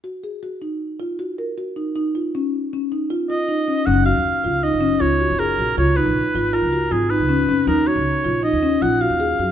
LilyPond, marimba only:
\new Staff \with { instrumentName = "Marimba" } { \time 5/4 \key fis \major \tempo 4 = 157 fis'8 gis'8 fis'8 dis'4 eis'8 fis'8 ais'8 fis'8 dis'8 | dis'8 eis'8 cis'4 cis'8 dis'8 eis'8 eis'8 dis'8 cis'8 | cis'8 fis'4 eis'8 dis'8 cis'8 eis'8 fis'8 gis'8 fis'8 | eis'8 dis'4 eis'8 eis'8 fis'8 eis'8 dis'8 cis'8 cis'8 |
dis'8 fis'4 eis'8 dis'8 cis'8 eis'8 fis'8 gis'8 fis'8 | }